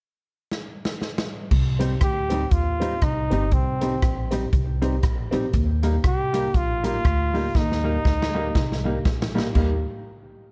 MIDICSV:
0, 0, Header, 1, 7, 480
1, 0, Start_track
1, 0, Tempo, 502092
1, 1450, Time_signature, 4, 2, 24, 8
1, 10055, End_track
2, 0, Start_track
2, 0, Title_t, "Trombone"
2, 0, Program_c, 0, 57
2, 1947, Note_on_c, 0, 67, 102
2, 2413, Note_on_c, 0, 65, 91
2, 2428, Note_off_c, 0, 67, 0
2, 2899, Note_on_c, 0, 63, 92
2, 2913, Note_off_c, 0, 65, 0
2, 3377, Note_on_c, 0, 60, 81
2, 3391, Note_off_c, 0, 63, 0
2, 4137, Note_off_c, 0, 60, 0
2, 5796, Note_on_c, 0, 67, 99
2, 6279, Note_on_c, 0, 65, 103
2, 6294, Note_off_c, 0, 67, 0
2, 6550, Note_off_c, 0, 65, 0
2, 6561, Note_on_c, 0, 65, 102
2, 7244, Note_on_c, 0, 63, 93
2, 7259, Note_off_c, 0, 65, 0
2, 8671, Note_off_c, 0, 63, 0
2, 10055, End_track
3, 0, Start_track
3, 0, Title_t, "Upright piano"
3, 0, Program_c, 1, 0
3, 1714, Note_on_c, 1, 60, 85
3, 1721, Note_on_c, 1, 63, 73
3, 1725, Note_on_c, 1, 67, 91
3, 1843, Note_off_c, 1, 60, 0
3, 1847, Note_off_c, 1, 63, 0
3, 1849, Note_off_c, 1, 67, 0
3, 2195, Note_on_c, 1, 60, 92
3, 2201, Note_on_c, 1, 63, 80
3, 2208, Note_on_c, 1, 67, 97
3, 2324, Note_off_c, 1, 60, 0
3, 2327, Note_off_c, 1, 63, 0
3, 2331, Note_off_c, 1, 67, 0
3, 2676, Note_on_c, 1, 60, 88
3, 2684, Note_on_c, 1, 63, 80
3, 2690, Note_on_c, 1, 67, 98
3, 2805, Note_off_c, 1, 60, 0
3, 2809, Note_off_c, 1, 63, 0
3, 2812, Note_off_c, 1, 67, 0
3, 3158, Note_on_c, 1, 60, 88
3, 3161, Note_on_c, 1, 63, 88
3, 3166, Note_on_c, 1, 67, 98
3, 3286, Note_off_c, 1, 60, 0
3, 3288, Note_off_c, 1, 63, 0
3, 3290, Note_off_c, 1, 67, 0
3, 3643, Note_on_c, 1, 60, 84
3, 3650, Note_on_c, 1, 63, 72
3, 3656, Note_on_c, 1, 67, 95
3, 3770, Note_off_c, 1, 60, 0
3, 3773, Note_off_c, 1, 63, 0
3, 3776, Note_off_c, 1, 67, 0
3, 4118, Note_on_c, 1, 60, 94
3, 4124, Note_on_c, 1, 63, 84
3, 4130, Note_on_c, 1, 67, 104
3, 4248, Note_off_c, 1, 60, 0
3, 4250, Note_off_c, 1, 63, 0
3, 4254, Note_off_c, 1, 67, 0
3, 4605, Note_on_c, 1, 60, 86
3, 4607, Note_on_c, 1, 63, 81
3, 4614, Note_on_c, 1, 67, 98
3, 4732, Note_off_c, 1, 60, 0
3, 4732, Note_off_c, 1, 63, 0
3, 4736, Note_off_c, 1, 67, 0
3, 5079, Note_on_c, 1, 60, 98
3, 5087, Note_on_c, 1, 63, 87
3, 5094, Note_on_c, 1, 67, 111
3, 5209, Note_off_c, 1, 60, 0
3, 5213, Note_off_c, 1, 63, 0
3, 5216, Note_off_c, 1, 67, 0
3, 5569, Note_on_c, 1, 58, 85
3, 5575, Note_on_c, 1, 63, 77
3, 5582, Note_on_c, 1, 67, 92
3, 5694, Note_off_c, 1, 58, 0
3, 5697, Note_off_c, 1, 63, 0
3, 5700, Note_off_c, 1, 67, 0
3, 6049, Note_on_c, 1, 58, 94
3, 6053, Note_on_c, 1, 63, 81
3, 6059, Note_on_c, 1, 67, 96
3, 6174, Note_off_c, 1, 58, 0
3, 6176, Note_off_c, 1, 63, 0
3, 6179, Note_off_c, 1, 67, 0
3, 6526, Note_on_c, 1, 58, 88
3, 6531, Note_on_c, 1, 63, 78
3, 6540, Note_on_c, 1, 67, 88
3, 6653, Note_off_c, 1, 58, 0
3, 6656, Note_off_c, 1, 63, 0
3, 6660, Note_off_c, 1, 67, 0
3, 7011, Note_on_c, 1, 58, 92
3, 7016, Note_on_c, 1, 63, 85
3, 7020, Note_on_c, 1, 67, 99
3, 7135, Note_off_c, 1, 58, 0
3, 7138, Note_off_c, 1, 63, 0
3, 7140, Note_off_c, 1, 67, 0
3, 7491, Note_on_c, 1, 58, 80
3, 7497, Note_on_c, 1, 63, 79
3, 7504, Note_on_c, 1, 67, 99
3, 7616, Note_off_c, 1, 58, 0
3, 7618, Note_off_c, 1, 63, 0
3, 7622, Note_off_c, 1, 67, 0
3, 7970, Note_on_c, 1, 58, 94
3, 7974, Note_on_c, 1, 63, 85
3, 7979, Note_on_c, 1, 67, 109
3, 8095, Note_off_c, 1, 58, 0
3, 8097, Note_off_c, 1, 63, 0
3, 8099, Note_off_c, 1, 67, 0
3, 8451, Note_on_c, 1, 58, 81
3, 8460, Note_on_c, 1, 63, 81
3, 8463, Note_on_c, 1, 67, 93
3, 8575, Note_off_c, 1, 58, 0
3, 8580, Note_off_c, 1, 63, 0
3, 8581, Note_off_c, 1, 67, 0
3, 8931, Note_on_c, 1, 58, 91
3, 8938, Note_on_c, 1, 63, 83
3, 8940, Note_on_c, 1, 67, 99
3, 9055, Note_off_c, 1, 58, 0
3, 9058, Note_off_c, 1, 63, 0
3, 9059, Note_off_c, 1, 67, 0
3, 9124, Note_on_c, 1, 58, 84
3, 9125, Note_on_c, 1, 63, 75
3, 9131, Note_on_c, 1, 67, 92
3, 9339, Note_off_c, 1, 58, 0
3, 9339, Note_off_c, 1, 63, 0
3, 9343, Note_off_c, 1, 67, 0
3, 10055, End_track
4, 0, Start_track
4, 0, Title_t, "Hollow-body jazz guitar"
4, 0, Program_c, 2, 26
4, 1722, Note_on_c, 2, 55, 70
4, 1732, Note_on_c, 2, 60, 82
4, 1739, Note_on_c, 2, 63, 80
4, 1835, Note_off_c, 2, 55, 0
4, 1840, Note_off_c, 2, 60, 0
4, 1844, Note_off_c, 2, 63, 0
4, 2216, Note_on_c, 2, 55, 80
4, 2222, Note_on_c, 2, 60, 88
4, 2232, Note_on_c, 2, 63, 91
4, 2322, Note_off_c, 2, 55, 0
4, 2325, Note_off_c, 2, 60, 0
4, 2331, Note_off_c, 2, 63, 0
4, 2689, Note_on_c, 2, 55, 84
4, 2697, Note_on_c, 2, 60, 79
4, 2703, Note_on_c, 2, 63, 89
4, 2799, Note_off_c, 2, 55, 0
4, 2803, Note_off_c, 2, 60, 0
4, 2806, Note_off_c, 2, 63, 0
4, 3176, Note_on_c, 2, 55, 77
4, 3185, Note_on_c, 2, 60, 86
4, 3189, Note_on_c, 2, 63, 89
4, 3283, Note_off_c, 2, 55, 0
4, 3287, Note_off_c, 2, 60, 0
4, 3289, Note_off_c, 2, 63, 0
4, 3652, Note_on_c, 2, 55, 71
4, 3662, Note_on_c, 2, 60, 74
4, 3667, Note_on_c, 2, 63, 81
4, 3762, Note_off_c, 2, 55, 0
4, 3766, Note_off_c, 2, 60, 0
4, 3769, Note_off_c, 2, 63, 0
4, 4134, Note_on_c, 2, 55, 81
4, 4142, Note_on_c, 2, 60, 75
4, 4145, Note_on_c, 2, 63, 86
4, 4243, Note_off_c, 2, 55, 0
4, 4247, Note_off_c, 2, 60, 0
4, 4248, Note_off_c, 2, 63, 0
4, 4606, Note_on_c, 2, 55, 90
4, 4610, Note_on_c, 2, 60, 93
4, 4624, Note_on_c, 2, 63, 92
4, 4719, Note_off_c, 2, 55, 0
4, 4721, Note_off_c, 2, 60, 0
4, 4728, Note_off_c, 2, 63, 0
4, 5097, Note_on_c, 2, 55, 82
4, 5102, Note_on_c, 2, 60, 80
4, 5110, Note_on_c, 2, 63, 88
4, 5205, Note_off_c, 2, 55, 0
4, 5208, Note_off_c, 2, 60, 0
4, 5212, Note_off_c, 2, 63, 0
4, 5575, Note_on_c, 2, 55, 74
4, 5583, Note_on_c, 2, 58, 77
4, 5590, Note_on_c, 2, 63, 82
4, 5685, Note_off_c, 2, 55, 0
4, 5688, Note_off_c, 2, 58, 0
4, 5692, Note_off_c, 2, 63, 0
4, 6059, Note_on_c, 2, 55, 94
4, 6067, Note_on_c, 2, 58, 85
4, 6074, Note_on_c, 2, 63, 88
4, 6167, Note_off_c, 2, 55, 0
4, 6171, Note_off_c, 2, 58, 0
4, 6174, Note_off_c, 2, 63, 0
4, 6536, Note_on_c, 2, 55, 86
4, 6545, Note_on_c, 2, 58, 99
4, 6552, Note_on_c, 2, 63, 91
4, 6645, Note_off_c, 2, 55, 0
4, 6650, Note_off_c, 2, 58, 0
4, 6654, Note_off_c, 2, 63, 0
4, 7014, Note_on_c, 2, 55, 75
4, 7025, Note_on_c, 2, 58, 88
4, 7032, Note_on_c, 2, 63, 86
4, 7124, Note_off_c, 2, 55, 0
4, 7130, Note_off_c, 2, 58, 0
4, 7133, Note_off_c, 2, 63, 0
4, 7494, Note_on_c, 2, 55, 76
4, 7502, Note_on_c, 2, 58, 83
4, 7512, Note_on_c, 2, 63, 93
4, 7605, Note_off_c, 2, 55, 0
4, 7608, Note_off_c, 2, 58, 0
4, 7614, Note_off_c, 2, 63, 0
4, 7981, Note_on_c, 2, 55, 89
4, 7989, Note_on_c, 2, 58, 83
4, 7995, Note_on_c, 2, 63, 88
4, 8088, Note_off_c, 2, 55, 0
4, 8092, Note_off_c, 2, 58, 0
4, 8095, Note_off_c, 2, 63, 0
4, 8459, Note_on_c, 2, 55, 75
4, 8470, Note_on_c, 2, 58, 88
4, 8473, Note_on_c, 2, 63, 87
4, 8567, Note_off_c, 2, 55, 0
4, 8572, Note_off_c, 2, 58, 0
4, 8574, Note_off_c, 2, 63, 0
4, 8939, Note_on_c, 2, 55, 89
4, 8944, Note_on_c, 2, 58, 80
4, 8953, Note_on_c, 2, 63, 84
4, 9046, Note_off_c, 2, 55, 0
4, 9049, Note_off_c, 2, 58, 0
4, 9054, Note_off_c, 2, 63, 0
4, 9135, Note_on_c, 2, 55, 86
4, 9147, Note_on_c, 2, 58, 85
4, 9150, Note_on_c, 2, 63, 86
4, 9304, Note_off_c, 2, 55, 0
4, 9310, Note_off_c, 2, 58, 0
4, 9312, Note_off_c, 2, 63, 0
4, 10055, End_track
5, 0, Start_track
5, 0, Title_t, "Upright bass"
5, 0, Program_c, 3, 32
5, 1446, Note_on_c, 3, 36, 108
5, 1856, Note_off_c, 3, 36, 0
5, 1925, Note_on_c, 3, 38, 85
5, 2336, Note_off_c, 3, 38, 0
5, 2401, Note_on_c, 3, 39, 90
5, 2814, Note_off_c, 3, 39, 0
5, 2886, Note_on_c, 3, 36, 93
5, 3128, Note_off_c, 3, 36, 0
5, 3169, Note_on_c, 3, 31, 84
5, 3340, Note_off_c, 3, 31, 0
5, 3364, Note_on_c, 3, 36, 96
5, 3777, Note_off_c, 3, 36, 0
5, 3846, Note_on_c, 3, 34, 80
5, 4258, Note_off_c, 3, 34, 0
5, 4330, Note_on_c, 3, 36, 92
5, 4811, Note_off_c, 3, 36, 0
5, 4811, Note_on_c, 3, 34, 89
5, 5052, Note_off_c, 3, 34, 0
5, 5086, Note_on_c, 3, 34, 78
5, 5260, Note_off_c, 3, 34, 0
5, 5293, Note_on_c, 3, 39, 109
5, 5703, Note_off_c, 3, 39, 0
5, 5773, Note_on_c, 3, 36, 78
5, 6183, Note_off_c, 3, 36, 0
5, 6252, Note_on_c, 3, 34, 82
5, 6663, Note_off_c, 3, 34, 0
5, 6735, Note_on_c, 3, 38, 92
5, 7144, Note_off_c, 3, 38, 0
5, 7218, Note_on_c, 3, 39, 111
5, 7626, Note_off_c, 3, 39, 0
5, 7696, Note_on_c, 3, 38, 84
5, 8105, Note_off_c, 3, 38, 0
5, 8174, Note_on_c, 3, 36, 84
5, 8583, Note_off_c, 3, 36, 0
5, 8652, Note_on_c, 3, 34, 82
5, 9062, Note_off_c, 3, 34, 0
5, 9133, Note_on_c, 3, 39, 101
5, 9396, Note_off_c, 3, 39, 0
5, 10055, End_track
6, 0, Start_track
6, 0, Title_t, "Muted hollow-body jazz guitar strokes"
6, 2415, Note_on_c, 9, 29, 35
6, 2511, Note_off_c, 9, 29, 0
6, 4333, Note_on_c, 9, 29, 35
6, 4428, Note_off_c, 9, 29, 0
6, 6268, Note_on_c, 9, 29, 36
6, 6364, Note_off_c, 9, 29, 0
6, 8185, Note_on_c, 9, 29, 40
6, 8281, Note_off_c, 9, 29, 0
6, 10055, End_track
7, 0, Start_track
7, 0, Title_t, "Drums"
7, 491, Note_on_c, 9, 38, 52
7, 587, Note_off_c, 9, 38, 0
7, 814, Note_on_c, 9, 38, 77
7, 910, Note_off_c, 9, 38, 0
7, 970, Note_on_c, 9, 38, 67
7, 1066, Note_off_c, 9, 38, 0
7, 1130, Note_on_c, 9, 38, 90
7, 1226, Note_off_c, 9, 38, 0
7, 1447, Note_on_c, 9, 36, 110
7, 1447, Note_on_c, 9, 49, 80
7, 1542, Note_off_c, 9, 49, 0
7, 1543, Note_off_c, 9, 36, 0
7, 1727, Note_on_c, 9, 42, 90
7, 1822, Note_off_c, 9, 42, 0
7, 1921, Note_on_c, 9, 37, 110
7, 1924, Note_on_c, 9, 36, 117
7, 1926, Note_on_c, 9, 42, 92
7, 2017, Note_off_c, 9, 37, 0
7, 2020, Note_off_c, 9, 36, 0
7, 2021, Note_off_c, 9, 42, 0
7, 2201, Note_on_c, 9, 42, 95
7, 2296, Note_off_c, 9, 42, 0
7, 2402, Note_on_c, 9, 42, 69
7, 2404, Note_on_c, 9, 36, 98
7, 2498, Note_off_c, 9, 42, 0
7, 2500, Note_off_c, 9, 36, 0
7, 2692, Note_on_c, 9, 42, 88
7, 2788, Note_off_c, 9, 42, 0
7, 2883, Note_on_c, 9, 42, 73
7, 2888, Note_on_c, 9, 36, 112
7, 2888, Note_on_c, 9, 37, 100
7, 2979, Note_off_c, 9, 42, 0
7, 2983, Note_off_c, 9, 36, 0
7, 2984, Note_off_c, 9, 37, 0
7, 3168, Note_on_c, 9, 42, 78
7, 3263, Note_off_c, 9, 42, 0
7, 3360, Note_on_c, 9, 42, 73
7, 3365, Note_on_c, 9, 36, 101
7, 3456, Note_off_c, 9, 42, 0
7, 3460, Note_off_c, 9, 36, 0
7, 3647, Note_on_c, 9, 42, 91
7, 3742, Note_off_c, 9, 42, 0
7, 3848, Note_on_c, 9, 36, 111
7, 3848, Note_on_c, 9, 37, 104
7, 3852, Note_on_c, 9, 42, 83
7, 3944, Note_off_c, 9, 36, 0
7, 3944, Note_off_c, 9, 37, 0
7, 3948, Note_off_c, 9, 42, 0
7, 4125, Note_on_c, 9, 42, 89
7, 4221, Note_off_c, 9, 42, 0
7, 4329, Note_on_c, 9, 36, 96
7, 4331, Note_on_c, 9, 42, 66
7, 4425, Note_off_c, 9, 36, 0
7, 4427, Note_off_c, 9, 42, 0
7, 4611, Note_on_c, 9, 42, 83
7, 4707, Note_off_c, 9, 42, 0
7, 4808, Note_on_c, 9, 42, 82
7, 4812, Note_on_c, 9, 36, 113
7, 4813, Note_on_c, 9, 37, 104
7, 4904, Note_off_c, 9, 42, 0
7, 4908, Note_off_c, 9, 36, 0
7, 4909, Note_off_c, 9, 37, 0
7, 5091, Note_on_c, 9, 42, 83
7, 5187, Note_off_c, 9, 42, 0
7, 5290, Note_on_c, 9, 42, 74
7, 5293, Note_on_c, 9, 36, 103
7, 5386, Note_off_c, 9, 42, 0
7, 5388, Note_off_c, 9, 36, 0
7, 5574, Note_on_c, 9, 42, 91
7, 5670, Note_off_c, 9, 42, 0
7, 5774, Note_on_c, 9, 37, 106
7, 5775, Note_on_c, 9, 36, 115
7, 5778, Note_on_c, 9, 42, 80
7, 5870, Note_off_c, 9, 37, 0
7, 5871, Note_off_c, 9, 36, 0
7, 5874, Note_off_c, 9, 42, 0
7, 6060, Note_on_c, 9, 42, 90
7, 6155, Note_off_c, 9, 42, 0
7, 6255, Note_on_c, 9, 36, 102
7, 6256, Note_on_c, 9, 42, 68
7, 6351, Note_off_c, 9, 36, 0
7, 6352, Note_off_c, 9, 42, 0
7, 6540, Note_on_c, 9, 42, 90
7, 6636, Note_off_c, 9, 42, 0
7, 6737, Note_on_c, 9, 42, 79
7, 6738, Note_on_c, 9, 36, 109
7, 6742, Note_on_c, 9, 37, 99
7, 6833, Note_off_c, 9, 42, 0
7, 6834, Note_off_c, 9, 36, 0
7, 6838, Note_off_c, 9, 37, 0
7, 7022, Note_on_c, 9, 46, 42
7, 7118, Note_off_c, 9, 46, 0
7, 7217, Note_on_c, 9, 36, 108
7, 7220, Note_on_c, 9, 38, 49
7, 7313, Note_off_c, 9, 36, 0
7, 7315, Note_off_c, 9, 38, 0
7, 7377, Note_on_c, 9, 38, 52
7, 7473, Note_off_c, 9, 38, 0
7, 7697, Note_on_c, 9, 36, 110
7, 7702, Note_on_c, 9, 38, 58
7, 7792, Note_off_c, 9, 36, 0
7, 7797, Note_off_c, 9, 38, 0
7, 7861, Note_on_c, 9, 38, 77
7, 7957, Note_off_c, 9, 38, 0
7, 8175, Note_on_c, 9, 36, 104
7, 8178, Note_on_c, 9, 38, 82
7, 8271, Note_off_c, 9, 36, 0
7, 8273, Note_off_c, 9, 38, 0
7, 8336, Note_on_c, 9, 38, 68
7, 8432, Note_off_c, 9, 38, 0
7, 8655, Note_on_c, 9, 36, 108
7, 8655, Note_on_c, 9, 38, 76
7, 8750, Note_off_c, 9, 36, 0
7, 8751, Note_off_c, 9, 38, 0
7, 8815, Note_on_c, 9, 38, 99
7, 8911, Note_off_c, 9, 38, 0
7, 8971, Note_on_c, 9, 38, 86
7, 9066, Note_off_c, 9, 38, 0
7, 9129, Note_on_c, 9, 52, 78
7, 9133, Note_on_c, 9, 36, 91
7, 9224, Note_off_c, 9, 52, 0
7, 9228, Note_off_c, 9, 36, 0
7, 10055, End_track
0, 0, End_of_file